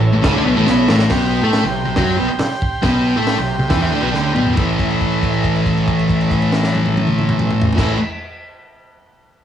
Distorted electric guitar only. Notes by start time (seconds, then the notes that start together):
0.12 A2
0.22 C#3 C#4
0.33 D3 D4
0.44 B2 B3
0.55 A2 A3
0.66 B2 B3
0.88 A2 A3
1.11 B2 B3
1.42 A3 A4
1.64 C3
1.85 C3
1.96 F#3 F#4
2.17 B2 B3
2.29 muted distorted electric guitar stroke
2.40 muted distorted electric guitar stroke
2.82 B2 B3
3.16 A3 A4
3.38 C3
3.59 C3
3.70 E3 E4
3.81 E3 E4
3.91 D3 D4
4.02 B2 B3
4.12 D3 D4
4.33 B2 B3
4.53 A2 E3
4.58 A3
7.75 A2 E3
7.80 A3